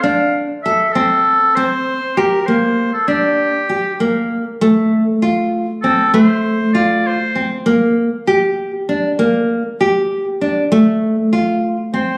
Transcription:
<<
  \new Staff \with { instrumentName = "Oboe" } { \time 5/8 \key g \dorian \tempo 4 = 98 f''8 r8 e''8 a'4 | c''4 bes'8 c''8. a'16 | g'4. r4 | r2 a'8 |
c''4 d''8 c''8. r16 | r2 r8 | r2 r8 | r2 c''8 | }
  \new Staff \with { instrumentName = "Nylon-string guitar" } { \time 5/8 \key g \dorian d'4 a'8 c'4 | c'4 g'8 bes4 | d'4 g'8 bes4 | a4 f'4 c'8 |
a4 f'4 c'8 | bes4 g'4 d'8 | bes4 g'4 d'8 | a4 f'4 c'8 | }
>>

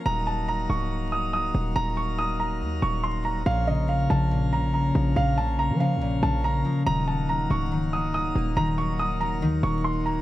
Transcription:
<<
  \new Staff \with { instrumentName = "Grand piano" } { \time 4/4 \key ees \dorian \tempo 4 = 141 bes''8 a''8 bes''8 des'''4 ees'''8 ees'''4 | bes''8 des'''8 ees'''8 bes''4 des'''8 c'''8 bes''8 | f''8 ees''8 f''8 a''4 bes''8 bes''4 | f''8 a''8 bes''8 f''4 a''8 bes''4 |
bes''8 a''8 bes''8 des'''4 ees'''8 ees'''4 | bes''8 des'''8 ees'''8 bes''4 des'''8 c'''8 bes''8 | }
  \new Staff \with { instrumentName = "Pipe organ" } { \time 4/4 \key ees \dorian bes'1~ | bes'1~ | bes'1~ | bes'1 |
bes'1~ | bes'1 | }
  \new Staff \with { instrumentName = "Pipe organ" } { \time 4/4 \key ees \dorian <ges bes ees'>1~ | <ges bes ees'>1 | <f bes des'>1~ | <f bes des'>1 |
<ges bes ees'>1~ | <ges bes ees'>1 | }
  \new Staff \with { instrumentName = "Harp" } { \clef bass \time 4/4 \key ees \dorian r1 | r1 | bes,8 des4 des8 bes,8 des4 f8 | bes,8 des4 des8 bes,8 des4 f8 |
ees8 ges4 ges8 ees8 ges4 bes8 | ees8 ges4 ges8 ees8 ges4 bes8 | }
  \new Staff \with { instrumentName = "808-style bass" } { \clef bass \time 4/4 \key ees \dorian ees,,4. des,,2 ees,,8 | ees,,2 ees,8 ees,,4. | bes,,4. bes,,2 bes,,8 | bes,,4~ bes,,16 f8~ f32 bes,,8~ bes,,32 bes,,4 r8 |
ees,,4. des,,2 ees,,8 | ees,,2 ees,8 ees,,4. | }
>>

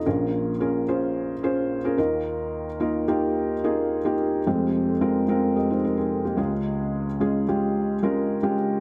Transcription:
<<
  \new Staff \with { instrumentName = "Felt piano" } { \time 4/4 \key bes \dorian \tempo 4 = 109 << { r1 | r1 | r2 <g' ees''>16 <ees' c''>16 bes'16 <c' aes'>8 <bes g'>8 r16 | r1 | } \\ { <des' f' aes' bes'>8. r16 <des' f' aes' bes'>8 <des' f' aes' c''>8. r16 <des' f' aes' c''>8 r16 <des' f' aes' bes'>16 <bes ees' f' bes'>8~ | <bes ees' f' bes'>8. r16 <bes ees' f' bes'>8 <bes ees' f' g'>8. r16 <bes ees' f' aes'>8 r16 <bes ees' f' g'>8 r16 | <aes c' f' g'>8. r16 <aes c' f' bes'>8 <aes c' f' bes'>8. r4 r16 <aes des' f' aes'>8~ | <aes des' f' aes'>8. r16 <aes des' f' aes'>8 <aes des' f' g'>8. r16 <aes des' f' bes'>8 r16 <aes des' f' g'>8 r16 | } >> }
  \new Staff \with { instrumentName = "Felt piano" } { \clef bass \time 4/4 \key bes \dorian <bes,, bes,>2.~ <bes,, bes,>8 <ees, ees>8~ | <ees, ees>2.~ <ees, ees>8 r8 | <f,, f,>2.~ <f,, f,>8 <des, des>8~ | <des, des>2.~ <des, des>8 r8 | }
>>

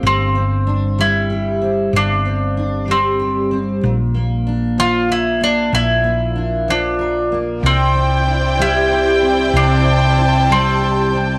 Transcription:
<<
  \new Staff \with { instrumentName = "Violin section" } { \time 6/8 \key c \major \tempo 4. = 63 r2. | r2. | r2. | r2. |
g''2.~ | g''2. | }
  \new Staff \with { instrumentName = "String section" } { \time 6/8 \key c \major << { r2. | r2. | r2. | r2. |
g''2. | a''2. | } \\ { r2. | r2. | r2. | r2. |
<e' c'' d''>2.~ | <e' c'' d''>2. | } >> }
  \new Staff \with { instrumentName = "Mandolin" } { \time 6/8 \key c \major c'4. e'4. | d'4. c'4 r8 | r4. f'8 e'8 d'8 | e'4. d'4 r8 |
c'4. e'4. | d'4. c'4 r8 | }
  \new Staff \with { instrumentName = "Steel-string acoustic guitar" } { \time 6/8 \key c \major g,8 c'8 d'8 g8 g'8 c'8 | g,8 c'8 d'8 g8 g'8 c'8 | bes,8 bes8 d'8 f8 bes'8 bes8 | bes,8 bes8 d'8 f8 bes'8 bes8 |
c8 c'8 d'8 g8 g'8 c'8 | c8 c'8 d'8 g8 g'8 c'8 | }
  \new Staff \with { instrumentName = "Fingered electric bass" } { \clef bass \time 6/8 \key c \major g,,2. | g,,2. | bes,,2. | bes,,2. |
c,2. | c,2. | }
>>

